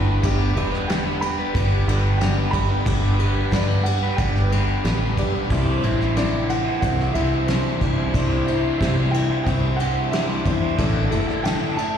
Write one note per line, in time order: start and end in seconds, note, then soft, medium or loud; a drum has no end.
0.00 0.19 G1 medium
0.00 0.22 G3 medium
0.00 0.23 B3 medium
0.00 0.23 D4 medium
0.00 0.23 G4 medium
0.00 0.96 G4 medium
0.00 5.47 G4 medium
0.00 0.96 B4 medium
0.00 5.48 B4 medium
0.00 0.96 D5 medium
0.00 11.98 D6 medium
0.06 0.24 B3 medium
0.06 0.23 D4 medium
0.06 0.24 B4 medium
0.23 0.52 G1 loud
0.23 0.56 G2 medium
0.23 0.56 D3 loud
0.23 0.55 G3 medium
0.23 0.56 B3 loud
0.23 0.55 D4 medium
0.23 0.55 G4 loud
0.23 0.56 B4 loud
0.23 kick loud
0.23 ride loud
0.55 1.43 E1 medium
0.55 0.88 G3 medium
0.55 0.73 B3 medium
0.55 0.74 D4 medium
0.55 0.89 G4 medium
0.55 0.72 B4 medium
0.55 ride medium
0.72 0.90 B3 medium
0.72 0.89 D4 medium
0.72 0.90 B4 medium
0.72 snare soft
0.88 1.22 G2 medium
0.88 1.22 D3 medium
0.88 1.22 G3 loud
0.88 1.07 B3 medium
0.88 1.08 D4 medium
0.88 1.20 G4 medium
0.88 1.06 B4 loud
0.88 1.23 G5 medium
0.88 snare loud
0.88 ride medium
1.06 1.23 B3 medium
1.06 1.22 D4 medium
1.06 1.23 B4 medium
1.21 1.53 G3 soft
1.21 1.54 B3 soft
1.21 1.54 D4 medium
1.21 1.55 G4 medium
1.21 1.52 B5 loud
1.21 muted overdriven electric guitar stroke soft
1.21 ride medium
1.39 1.89 B3 medium
1.39 1.90 D4 medium
1.39 1.90 B4 medium
1.54 1.84 G1 medium
1.54 1.88 G3 medium
1.54 1.88 B3 medium
1.54 1.87 D4 medium
1.54 1.86 G4 medium
1.54 kick loud
1.54 ride medium
1.87 2.45 G1 loud
1.87 2.20 G3 medium
1.87 2.20 B3 medium
1.87 2.21 D4 medium
1.87 2.20 G4 medium
1.87 2.21 B4 medium
1.87 ride medium
2.18 2.54 G2 medium
2.18 2.54 D3 medium
2.18 2.54 G3 loud
2.18 2.38 B3 loud
2.18 2.39 D4 loud
2.18 2.54 G5 medium
2.18 snare loud
2.18 ride loud
2.22 2.53 G4 medium
2.22 2.37 B4 loud
2.38 2.54 B3 medium
2.38 2.55 D4 medium
2.38 2.55 B4 medium
2.51 2.68 G1 medium
2.51 2.85 G3 medium
2.51 2.78 G4 medium
2.51 2.86 G4 medium
2.51 2.77 B4 medium
2.51 2.77 D5 medium
2.51 2.83 B5 loud
2.51 kick medium
2.51 ride medium
2.55 2.70 B3 medium
2.55 2.71 D4 medium
2.55 2.68 B4 medium
2.70 2.86 B3 medium
2.70 2.87 D4 medium
2.70 2.87 B4 medium
2.86 3.44 G1 loud
2.86 3.20 G2 medium
2.86 3.20 D3 medium
2.86 3.19 G3 medium
2.86 3.20 B3 loud
2.86 3.20 D4 loud
2.86 3.82 G4 medium
2.86 3.18 G4 medium
2.86 3.82 B4 medium
2.86 3.20 B4 medium
2.86 3.82 D5 medium
2.86 kick loud
2.86 ride loud
3.19 3.51 G3 medium
3.19 3.35 B3 medium
3.19 3.37 D4 medium
3.19 3.51 G4 medium
3.19 3.34 B4 medium
3.19 ride medium
3.35 3.52 B3 medium
3.35 3.51 D4 medium
3.35 3.52 B4 medium
3.50 3.85 G2 medium
3.50 4.10 G2 medium
3.50 3.85 D3 medium
3.50 3.85 G3 loud
3.50 3.68 B3 loud
3.50 3.70 D4 medium
3.50 3.84 G4 medium
3.50 3.67 B4 loud
3.50 3.87 D5 medium
3.50 kick medium
3.50 snare loud
3.50 ride loud
3.68 3.86 B3 medium
3.68 3.86 D4 medium
3.68 3.85 B4 medium
3.83 4.18 B3 soft
3.83 4.19 D4 medium
3.83 4.19 G4 medium
3.83 4.19 F#5 medium
3.83 muted overdriven electric guitar stroke soft
3.83 ride medium
3.88 4.17 G3 soft
4.03 4.52 B3 medium
4.03 4.53 D4 medium
4.03 4.53 B4 medium
4.17 4.76 G1 medium
4.17 4.51 G3 medium
4.17 4.52 B3 medium
4.17 4.51 D4 medium
4.17 4.50 G4 medium
4.17 5.13 G5 medium
4.17 kick loud
4.17 ride loud
4.36 snare soft
4.51 4.84 G3 medium
4.51 4.85 B3 medium
4.51 4.85 D4 medium
4.51 4.85 G4 medium
4.51 4.85 B4 medium
4.51 ride medium
4.84 5.14 A1 medium
4.84 5.18 G2 medium
4.84 5.18 D3 medium
4.84 5.18 G3 medium
4.84 5.00 B3 loud
4.84 5.03 D4 loud
4.84 5.15 G4 medium
4.84 4.99 B4 loud
4.84 snare medium
4.84 ride medium
5.00 5.18 B3 medium
5.00 5.19 D4 medium
5.00 5.19 B4 medium
5.16 5.48 B1 medium
5.16 5.51 G3 medium
5.16 5.35 B3 medium
5.16 5.36 D4 medium
5.16 5.50 G4 medium
5.16 5.42 G4 medium
5.16 5.42 B4 medium
5.16 5.33 B4 medium
5.16 5.42 D5 loud
5.16 kick medium
5.16 ride medium
5.35 5.50 B3 medium
5.35 5.50 D4 medium
5.35 5.49 B4 medium
5.50 5.79 C2 loud
5.50 6.15 C3 medium
5.50 6.16 E3 loud
5.50 5.82 G3 medium
5.50 5.83 C4 loud
5.50 5.84 D4 loud
5.50 5.84 E4 medium
5.50 6.46 E4 medium
5.50 10.75 C5 medium
5.50 6.46 C5 medium
5.50 5.84 C5 loud
5.50 6.46 D5 medium
5.50 10.74 E5 medium
5.50 kick loud
5.50 crash loud
5.83 6.70 A1 medium
5.83 6.01 G3 medium
5.83 6.00 C4 medium
5.83 6.17 D4 medium
5.83 6.00 E4 medium
5.83 5.99 C5 medium
5.83 ride medium
5.99 6.16 G3 medium
5.99 6.17 C4 medium
5.99 6.16 E4 medium
5.99 6.17 C5 medium
5.99 snare soft
6.16 7.47 C3 loud
6.16 7.48 E3 medium
6.16 6.34 G3 medium
6.16 6.33 C4 medium
6.16 6.50 D4 medium
6.16 6.33 E4 loud
6.16 6.32 C5 loud
6.16 6.51 D5 medium
6.16 snare loud
6.16 ride medium
6.32 6.47 G3 medium
6.32 6.48 C4 medium
6.32 6.48 E4 medium
6.32 6.48 C5 medium
6.48 6.82 D4 soft
6.48 6.82 E4 medium
6.48 6.80 F#5 loud
6.48 muted overdriven electric guitar stroke medium
6.48 ride medium
6.52 6.82 C4 soft
6.65 7.12 G3 soft
6.65 7.13 C4 medium
6.65 7.15 E4 medium
6.65 7.14 C5 medium
6.81 7.12 C2 medium
6.81 7.16 G3 medium
6.81 7.16 C4 medium
6.81 7.15 D4 medium
6.81 7.14 E4 medium
6.81 7.13 F#5 loud
6.81 kick loud
6.81 ride medium
7.00 snare soft
7.14 7.73 C2 medium
7.14 7.47 G3 medium
7.14 7.48 C4 medium
7.14 7.49 D4 medium
7.14 7.48 E4 medium
7.14 7.48 C5 medium
7.14 7.45 E5 medium
7.14 ride medium
7.47 7.98 C3 medium
7.47 8.13 E3 loud
7.47 7.65 G3 loud
7.47 7.65 C4 loud
7.47 7.81 D4 medium
7.47 7.65 E4 loud
7.47 7.94 C5 medium
7.47 7.63 C5 loud
7.47 snare loud
7.47 ride loud
7.64 7.79 G3 medium
7.64 7.80 C4 medium
7.64 7.82 E4 medium
7.64 7.81 C5 medium
7.80 7.96 C2 medium
7.80 7.98 G3 medium
7.80 7.97 C4 medium
7.80 8.14 D4 medium
7.80 8.05 E4 medium
7.80 7.97 E4 medium
7.80 8.06 C5 medium
7.80 7.96 C5 medium
7.80 8.05 D5 medium
7.80 kick medium
7.80 ride medium
7.97 8.13 G3 medium
7.97 8.13 C4 medium
7.97 8.15 E4 medium
7.97 8.14 C5 medium
8.13 8.72 C2 medium
8.13 8.79 C3 medium
8.13 8.80 E3 loud
8.13 8.44 G3 loud
8.13 8.45 C4 medium
8.13 8.47 D4 loud
8.13 8.47 E4 medium
8.13 9.10 E4 medium
8.13 9.10 C5 medium
8.13 8.47 C5 loud
8.13 9.10 D5 medium
8.13 kick loud
8.13 ride loud
8.45 8.64 G3 medium
8.45 8.64 C4 medium
8.45 8.80 D4 medium
8.45 8.64 E4 medium
8.45 8.62 C5 medium
8.45 ride medium
8.63 8.80 G3 medium
8.63 8.80 C4 medium
8.63 8.82 E4 medium
8.63 8.81 C5 medium
8.78 9.30 C3 medium
8.78 9.38 C3 medium
8.78 9.30 E3 medium
8.78 8.99 G3 medium
8.78 8.98 C4 loud
8.78 9.12 D4 loud
8.78 9.10 E5 medium
8.78 kick medium
8.78 ride loud
8.82 8.98 E4 loud
8.82 8.97 C5 loud
8.82 snare loud
8.98 9.14 G3 medium
8.98 9.14 C4 medium
8.98 9.14 E4 medium
8.98 9.15 C5 medium
9.11 9.45 C4 soft
9.11 9.47 D4 soft
9.11 9.46 E4 medium
9.11 9.42 G5 loud
9.11 ride medium
9.15 muted overdriven electric guitar stroke soft
9.30 9.78 G3 medium
9.30 9.78 C4 medium
9.30 9.79 E4 medium
9.30 9.79 C5 medium
9.44 10.33 C2 medium
9.44 9.79 G3 medium
9.44 9.80 C4 medium
9.44 9.79 G5 medium
9.44 kick loud
9.44 ride loud
9.48 9.79 D4 medium
9.48 9.77 E4 medium
9.77 10.13 G3 medium
9.77 10.13 C4 medium
9.77 10.12 D4 medium
9.77 10.13 E4 medium
9.77 10.12 F#5 loud
9.77 ride medium
9.81 10.13 C5 medium
10.11 10.62 C3 medium
10.11 10.62 E3 medium
10.11 10.30 G3 loud
10.11 10.29 C4 loud
10.11 10.45 D4 medium
10.11 10.27 E4 loud
10.11 10.27 C5 loud
10.11 10.58 E5 medium
10.11 snare loud
10.11 ride medium
10.28 10.44 G3 medium
10.28 10.45 C4 medium
10.28 10.46 E4 medium
10.28 10.46 C5 medium
10.45 10.75 E2 medium
10.45 10.62 G3 medium
10.45 10.62 C4 medium
10.45 10.79 D4 soft
10.45 10.70 E4 medium
10.45 10.61 E4 medium
10.45 10.70 C5 medium
10.45 10.60 C5 medium
10.45 10.70 D5 medium
10.45 kick medium
10.45 ride medium
10.61 10.77 G3 medium
10.61 10.77 C4 medium
10.61 10.77 E4 medium
10.61 10.76 C5 medium
10.77 11.08 A1 loud
10.77 11.43 A2 medium
10.77 11.09 D3 medium
10.77 11.12 A3 loud
10.77 11.10 D4 loud
10.77 11.10 E4 loud
10.77 11.74 E4 medium
10.77 11.74 A4 medium
10.77 11.98 A4 medium
10.77 11.11 A4 loud
10.77 11.74 D5 loud
10.77 11.98 E5 medium
10.77 kick loud
10.77 ride loud
11.10 11.98 F#1 medium
11.10 11.43 D3 medium
11.10 11.43 A3 medium
11.10 11.28 D4 medium
11.10 11.26 E4 medium
11.10 11.25 A4 medium
11.10 ride medium
11.27 11.45 D4 medium
11.27 11.44 E4 medium
11.27 11.45 A4 medium
11.27 snare soft
11.44 11.94 A2 medium
11.44 11.76 D3 loud
11.44 11.78 A3 medium
11.44 11.62 D4 medium
11.44 11.60 E4 loud
11.44 11.59 A4 loud
11.44 11.78 G5 loud
11.44 snare loud
11.44 ride loud
11.60 11.76 D4 medium
11.60 11.75 E4 medium
11.60 11.76 A4 medium
11.76 11.98 A3 soft
11.76 11.98 E4 medium
11.76 11.98 A4 medium
11.76 11.98 A5 loud
11.76 muted overdriven electric guitar stroke soft
11.76 ride medium
11.94 11.98 A4 medium